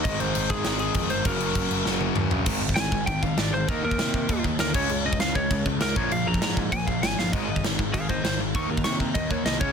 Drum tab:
CC |x-x-x-x-x-x-x-x-|x-x-x-x---------|x---x---x---x---|x---x---x---x-x-|
SD |--------o-------|--------o-------|----o-------o---|----o-------o---|
T1 |----------------|----------o-----|----------------|----------------|
T2 |----------------|------------o---|----------------|----------------|
FT |----------------|--------------o-|----------------|----------------|
BD |o-----o-----o---|o---o-----------|o--o--o-o-o-----|o--o--o-o-o---o-|

CC |x---x---x---x---|x---x---x---x---|x---x---x---x---|x---x---x---x---|
SD |----o-------o---|----o-------o-o-|----o-------o---|----o-------o---|
T1 |----------------|----------------|----------------|----------------|
T2 |----------------|----------------|----------------|----------------|
FT |----------------|----------------|----------------|----------------|
BD |---o--o-o-o---o-|---o--o-o-o-----|o--o--o-o-o-----|o--o--o-o-o---o-|